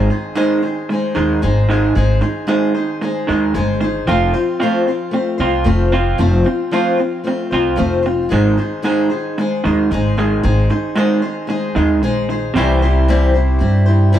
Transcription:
Already playing: steel-string acoustic guitar G#3 D#4 G#4
0.10 clean electric guitar G#2 D#3, steel-string acoustic guitar D#4 G#4 C5
0.35 clean electric guitar G#2 D#3 G#3, steel-string acoustic guitar G#3 D#4 G#4 C5
0.62 clean electric guitar G#2 D#3, steel-string acoustic guitar G#4 C5
0.66 steel-string acoustic guitar D#4
0.89 clean electric guitar G#2 D#3, steel-string acoustic guitar G#3 D#4 G#4
0.94 steel-string acoustic guitar C5
1.15 upright bass D#2, clean electric guitar G#2 D#3 G#3, steel-string acoustic guitar D#4 G#4 C5
1.42 upright bass G#1, clean electric guitar G#2 D#3, steel-string acoustic guitar G#3 D#4 G#4 C5
1.69 clean electric guitar G#2 D#3 G#3, steel-string acoustic guitar G#4 C5
1.73 steel-string acoustic guitar D#4
1.95 upright bass G#1, clean electric guitar G#2 D#3, steel-string acoustic guitar G#3 D#4 G#4 C5
2.21 clean electric guitar G#2 D#3, steel-string acoustic guitar D#4 G#4 C5
2.47 clean electric guitar G#2 D#3 G#3, steel-string acoustic guitar G#3 D#4 G#4 C5
2.75 clean electric guitar G#2 D#3, steel-string acoustic guitar D#4 G#4 C5
3.01 clean electric guitar G#2 D#3, steel-string acoustic guitar G#3 D#4 G#4 C5
3.27 upright bass D#2, clean electric guitar G#2 D#3 G#3, steel-string acoustic guitar G#4 C5
3.32 steel-string acoustic guitar D#4
3.54 upright bass G1, clean electric guitar G#2 D#3, steel-string acoustic guitar G#3 D#4 G#4 C5
3.80 clean electric guitar G#2 D#3, steel-string acoustic guitar D#4 G#4 C5
4.07 upright bass F1, steel-string acoustic guitar F3 A3 C4 F4 C5, clean electric guitar F3 C4 F4
4.33 clean electric guitar F3 C4, steel-string acoustic guitar C4 F4 C5
4.60 clean electric guitar F3 C4 F4, steel-string acoustic guitar F3 A3 C4 F4 C5
4.87 clean electric guitar F3 C4, steel-string acoustic guitar C4 F4 C5
5.11 clean electric guitar F3 C4, steel-string acoustic guitar A3 C4 F4 C5
5.38 upright bass C2, clean electric guitar F3 C4 F4, steel-string acoustic guitar C4 F4 C5
5.64 upright bass F1, steel-string acoustic guitar F3 A3 C4 F4 C5, clean electric guitar F3 C4
5.92 clean electric guitar F3 C4 F4, steel-string acoustic guitar C4 F4 C5
6.18 upright bass F1, steel-string acoustic guitar F3 A3 C4 F4 C5, clean electric guitar F3 C4
6.44 clean electric guitar F3 C4, steel-string acoustic guitar C4 F4 C5
6.71 steel-string acoustic guitar F3 A3 C4 F4 C5, clean electric guitar F3 C4 F4
6.97 clean electric guitar F3 C4, steel-string acoustic guitar C4 F4 C5
7.24 clean electric guitar F3, steel-string acoustic guitar A3 C4 F4 C5
7.28 clean electric guitar C4
7.51 upright bass C2, clean electric guitar F3 C4 F4, steel-string acoustic guitar C4 F4 C5
7.76 upright bass F1, steel-string acoustic guitar F3 A3 C4 F4 C5, clean electric guitar F3 C4
8.03 clean electric guitar F3 C4, steel-string acoustic guitar C4 F4 C5
8.29 upright bass G#1, clean electric guitar G#2 D#3, steel-string acoustic guitar G#3 D#4 G#4 C5
8.33 clean electric guitar G#3
8.57 clean electric guitar G#2 D#3, steel-string acoustic guitar D#4 G#4 C5
8.82 clean electric guitar G#2 D#3 G#3, steel-string acoustic guitar G#3 D#4 G#4 C5
9.10 steel-string acoustic guitar D#4 G#4 C5
9.38 clean electric guitar G#2 D#3, steel-string acoustic guitar G#3 D#4 G#4 C5
9.64 upright bass D#2, clean electric guitar G#2 D#3 G#3, steel-string acoustic guitar G#4 C5
9.68 steel-string acoustic guitar D#4
9.91 upright bass G#1, clean electric guitar G#2 D#3, steel-string acoustic guitar G#3 D#4 G#4 C5
10.17 clean electric guitar G#2 D#3 G#3, steel-string acoustic guitar D#4 G#4 C5
10.43 upright bass G#1, clean electric guitar G#2 D#3, steel-string acoustic guitar G#3 D#4 G#4 C5
10.70 clean electric guitar G#2 D#3, steel-string acoustic guitar D#4 G#4 C5
10.96 clean electric guitar G#2 D#3 G#3, steel-string acoustic guitar G#3 D#4 G#4 C5
11.22 clean electric guitar G#2 D#3, steel-string acoustic guitar D#4 G#4 C5
11.47 clean electric guitar G#2 D#3, steel-string acoustic guitar G#3 D#4 G#4 C5
11.75 upright bass D#2, clean electric guitar G#2 D#3 G#3, steel-string acoustic guitar D#4 G#4 C5
12.02 upright bass A#1, clean electric guitar G#2 D#3, steel-string acoustic guitar G#3 D#4 G#4 C5
12.29 clean electric guitar G#2 D#3, steel-string acoustic guitar G#4 C5
12.33 steel-string acoustic guitar D#4
12.54 upright bass C2, clean electric guitar C3 G3 C4 E4 G4, steel-string acoustic guitar C3 E3 G3 C4 E4
12.58 steel-string acoustic guitar C5
12.82 steel-string acoustic guitar G3 C4 E4 C5
13.08 steel-string acoustic guitar C3 E3 G3 C4 E4 C5
13.34 steel-string acoustic guitar G3 C4 E4 C5
13.59 upright bass G2, steel-string acoustic guitar G3 C4 E4 C5
13.86 steel-string acoustic guitar G3 C4 E4 C5
14.12 steel-string acoustic guitar C3 E3 G3 C4 E4 C5

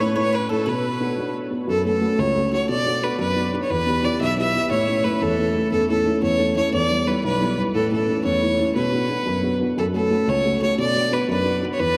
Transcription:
Already playing: upright piano A2
0.00 upright piano A3 C#4 E4, mandolin C#5, fiddle C#5
0.15 upright piano A3 C#4 E4, mandolin C#5, fiddle C#5
0.33 mandolin B4, fiddle B4
0.49 upright piano A3 C#4 E4, mandolin A4, fiddle A4
0.66 upright piano B2, mandolin B4, fiddle B4
1.00 upright piano B3 D4 F#4
1.17 upright piano B3 D4 F#4
1.51 upright piano B3 D4 F#4
1.68 upright piano F#2, fiddle A4
1.84 upright piano A3 C#4 F#4, fiddle A4
2.01 upright piano A3 C#4 F#4
2.18 upright piano C#2, fiddle C#5
2.35 upright piano A3 C#4 F#4
2.52 upright piano A3 C#4 F#4, fiddle C#5
2.69 upright piano B2, fiddle D5
2.85 upright piano B3 D4 F#4
3.02 upright piano B3 D4 F#4, fiddle B4
3.19 upright piano F#2, fiddle B4
3.36 upright piano B3 D4 F#4
3.53 upright piano B3 D4 F#4
3.63 fiddle C#5
3.70 upright piano E2, fiddle B4
3.86 upright piano B3 E4 G4
4.03 upright piano B3 E4 G4, fiddle D5
4.20 upright piano B1, fiddle E5
4.37 upright piano B3 E4 G4, fiddle E5
4.53 upright piano B3 E4 G4
4.71 upright piano A2, fiddle C#5
4.87 upright piano A3 C#4 E4
5.04 upright piano A3 C#4 E4, fiddle B4
5.21 upright piano E2, fiddle A4
5.38 upright piano A3 C#4 E4
5.54 upright piano A3 C#4 E4
5.71 upright piano E2, fiddle A4
5.88 upright piano A3 C#4 E4, fiddle A4
6.05 upright piano A3 C#4 E4
6.22 upright piano E2, fiddle C#5
6.39 upright piano A3 C#4 E4
6.56 upright piano A3 C#4 E4, fiddle C#5
6.73 upright piano E2, fiddle D5
6.90 upright piano G3 B3 E4
7.07 upright piano G3 B3 E4, fiddle B4
7.24 upright piano B1, fiddle B4
7.40 upright piano G3 B3 E4
7.58 upright piano G3 B3 E4
7.75 upright piano A2, fiddle A4
7.91 upright piano A3 C#4 E4, fiddle A4
8.08 upright piano A3 C#4 E4
8.24 upright piano E2, fiddle C#5
8.42 upright piano A3 C#4 E4
8.59 upright piano A3 C#4 E4
8.75 upright piano B2, fiddle B4
8.92 upright piano B3 D4 F#4
9.10 upright piano B3 D4 F#4
9.27 upright piano F#2
9.43 upright piano B3 D4 F#4
9.60 upright piano B3 D4 F#4
9.77 upright piano F#2, fiddle A4
9.93 upright piano A3 C#4 F#4, fiddle A4
10.10 upright piano A3 C#4 F#4
10.27 upright piano C#2, fiddle C#5
10.44 upright piano A3 C#4 F#4
10.62 upright piano A3 C#4 F#4, fiddle C#5
10.78 upright piano B2, fiddle D5
10.95 upright piano B3 D4 F#4
11.11 upright piano B3 D4 F#4, fiddle B4
11.28 upright piano F#2, fiddle B4
11.45 upright piano B3 D4 F#4
11.62 upright piano B3 D4 F#4
11.73 fiddle C#5
11.79 upright piano E2, fiddle B4

